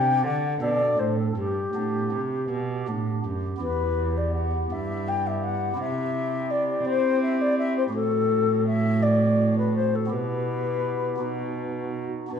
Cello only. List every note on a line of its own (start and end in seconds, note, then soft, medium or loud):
0.00 0.25 C3 medium
0.24 0.61 D3 medium
0.61 0.97 B2 medium
0.97 1.35 A2 soft
1.36 1.72 G2 medium
1.73 2.13 A2 soft
2.11 2.49 C3 soft
2.49 2.89 B2 soft
2.87 3.24 A2 soft
3.25 3.61 F#2 soft
3.62 4.67 E2 medium
4.71 5.77 G2 medium
5.78 6.84 C3 medium
6.85 7.91 C4 medium
7.93 10.12 A2 medium
10.11 11.21 B2 soft
11.21 12.10 B2 soft
12.32 12.40 B2 medium